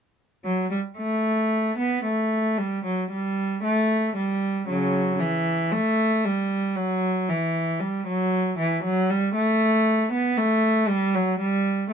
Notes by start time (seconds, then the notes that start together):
0.45 F#3
0.71 G3
0.98 A3
1.78 B3
2.04 A3
2.58 G3
2.85 F#3
3.11 G3
3.63 A3
4.16 G3
4.68 C#3 F#3
5.20 E3
5.72 A3
6.25 G3
6.76 F#3
7.29 E3
7.80 G3
8.07 F#3
8.59 E3
8.84 F#3
9.10 G3
9.34 A3
10.12 B3
10.37 A3
10.88 G3
11.15 F#3
11.39 G3